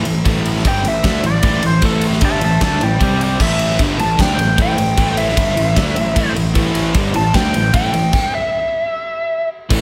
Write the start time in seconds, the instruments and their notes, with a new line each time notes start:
0.05 picked electric bass A1, overdriven electric guitar A2 E3, ride
0.24 picked electric bass A1, overdriven electric guitar A2 E3 A3, kick, ride
0.46 ride
0.57 snare
0.64 picked electric bass G1, overdriven electric guitar G2 D3 G3, lead electric guitar G5, kick, ride
0.83 picked electric bass A1, overdriven electric guitar A2 E3, ride
0.88 lead electric guitar E5
1.03 picked electric bass D2, overdriven electric guitar D3 A3 D4, kick, snare, ride
1.08 lead electric guitar E5
1.23 picked electric bass A1, overdriven electric guitar A2 E3, lead electric guitar D5, ride
1.43 picked electric bass A1, overdriven electric guitar A2 E3 A3, lead electric guitar D5, kick, ride
1.62 picked electric bass A1, overdriven electric guitar A2 E3, ride
1.66 lead electric guitar C5
1.82 picked electric bass A1, overdriven electric guitar A2 E3 A3, lead electric guitar A4, kick, ride
2.01 ride
2.12 snare
2.21 picked electric bass G1, overdriven electric guitar G2 D3 G3, lead electric guitar E5, kick, ride
2.25 lead electric guitar A5
2.40 picked electric bass A1, overdriven electric guitar A2 E3, ride
2.44 lead electric guitar E5 A5
2.60 picked electric bass D2, overdriven electric guitar D3 A3 D4, lead electric guitar E5, kick, snare, ride
2.65 lead electric guitar A5
2.80 picked electric bass A1, overdriven electric guitar A2 E3, lead electric guitar D5 G5, ride
2.99 picked electric bass C2, overdriven electric guitar C3 G3 C4, lead electric guitar G5, kick, ride
3.03 lead electric guitar D5
3.21 lead electric guitar D5 G5, ride
3.39 picked electric bass A1, overdriven electric guitar A2 E3 A3, lead electric guitar E5, kick, crash
3.59 ride
3.71 snare
3.78 picked electric bass G1, overdriven electric guitar G2 D3 G3, kick, ride
3.98 picked electric bass A1, overdriven electric guitar A2 E3, lead electric guitar A5, ride
4.17 picked electric bass D2, overdriven electric guitar D3 A3 D4, lead electric guitar G5, kick, snare, ride
4.37 picked electric bass A1, overdriven electric guitar A2 E3, ride
4.56 picked electric bass A1, overdriven electric guitar A2 E3 A3, kick, ride
4.62 lead electric guitar G5
4.77 picked electric bass A1, overdriven electric guitar A2 E3, ride
4.96 picked electric bass A1, overdriven electric guitar A2 E3 A3, kick, ride
5.17 lead electric guitar E5, ride
5.29 snare
5.36 picked electric bass G1, overdriven electric guitar G2 D3 G3, kick, ride
5.56 picked electric bass A1, overdriven electric guitar A2 E3, ride
5.75 picked electric bass D2, overdriven electric guitar D3 A3 D4, kick, snare, ride
5.96 picked electric bass A1, overdriven electric guitar A2 E3, ride
6.16 picked electric bass A1, overdriven electric guitar A2 E3 A3, kick, ride
6.35 picked electric bass A1, overdriven electric guitar A2 E3, ride
6.54 picked electric bass A1, overdriven electric guitar A2 E3 A3, kick, ride
6.75 ride
6.94 picked electric bass G1, overdriven electric guitar G2 D3 G3, kick, ride
7.14 picked electric bass A1, overdriven electric guitar A2 E3, lead electric guitar A5, ride
7.34 picked electric bass D2, overdriven electric guitar D3 A3 D4, lead electric guitar G5, kick, snare, ride
7.53 picked electric bass A1, overdriven electric guitar A2 E3, ride
7.73 picked electric bass A1, overdriven electric guitar A2 E3 A3, lead electric guitar G5, kick, ride
7.93 picked electric bass A1, overdriven electric guitar A2 E3, ride
8.13 kick, crash
8.35 lead electric guitar E5
9.69 picked electric bass A1, overdriven electric guitar A2 E3 A3, kick, crash